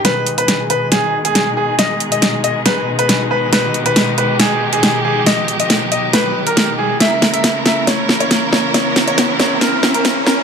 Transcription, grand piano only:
\new Staff \with { instrumentName = "Grand piano" } { \time 4/4 \key gis \minor \tempo 4 = 138 b'8 r16 b'8 r16 b'16 r16 gis'8 r16 gis'8 r16 gis'16 r16 | dis''8 r16 dis''8 r16 dis''16 r16 b'8 r16 b'8 r16 b'16 r16 | b'8 r16 b'8 r16 b'16 r16 gis'8 r16 gis'8 r16 gis'16 r16 | dis''8 r16 dis''8 r16 dis''16 r16 b'8 r16 ais'8 r16 gis'16 r16 |
e''8 r16 e''8 r16 e''16 r16 cis''8 r16 cis''8 r16 cis''16 r16 | cis''8 r16 cis''8 r16 cis''16 r16 ais'8 r16 ais'8 r16 ais'16 r16 | }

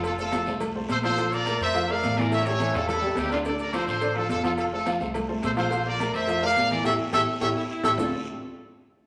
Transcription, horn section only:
\new Staff \with { instrumentName = "Horn section" } { \time 4/4 \key d \minor \tempo 4 = 212 <f' a'>8 <f' a'>4 r4. <a' c''>8 <a' c''>8~ | <a' c''>8 <bes' d''>4 <c'' e''>4 <d'' f''>4 <bes' d''>8 | <cis'' e''>8 <a' cis''>4 <f' a'>8 <e' a'>4 <e' g'>8 <d' f'>8 | <a' d''>8 <bes' d''>8 <a' c''>8 <a' c''>4 <f' a'>8 <f' a'>8 <f' a'>8 |
<f' a'>8 <f' a'>4 r4. <a' c''>8 <a' c''>8~ | <a' c''>8 <bes' d''>4 <c'' e''>4 <d'' f''>4 <bes' d''>8 | <a' cis'' e''>8 r8 <a' cis'' e''>8 r8 <a' cis'' e''>8 r4 <a' cis'' e''>8 | a'8 r2. r8 | }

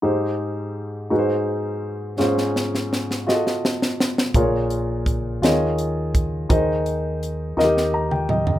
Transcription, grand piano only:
\new Staff \with { instrumentName = "Grand piano" } { \time 6/8 \key aes \major \tempo 4. = 56 << { r2. | r2. | r2. | r2 bes''16 g''16 ees''8 | } \\ { <aes, ees' g' aes' c''>4. <aes, ees' ges' aes' ces'' c''>4. | <aes, des' f' aes' c''>4. <f' ges' aes' a' ees''>4. | <bes, f' aes' bes' des''>4. <ees f' aes' des'' ees''>4. | <ees ees' aes' c'' ees''>4. <ees ees' f' g' bes' ees''>4. | } >> }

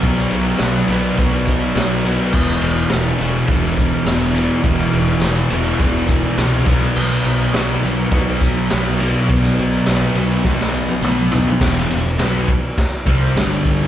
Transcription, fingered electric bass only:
\new Staff \with { instrumentName = "Fingered electric bass" } { \clef bass \time 4/4 \key e \minor \tempo 4 = 104 b,,8 b,,8 b,,8 b,,8 b,,4 b,,4 | e,,8 e,,8 e,,8 e,,8 e,,4 e,,4 | e,,8 e,,8 e,,8 e,,8 e,,4 c,8 b,,8 | b,,8 b,,8 b,,8 b,,8 b,,4 b,,4 |
b,,8 b,,8 b,,8 b,,8 b,,4 b,,4 | e,,8 e,,8 b,,8 r4 c,8 g,,4 | }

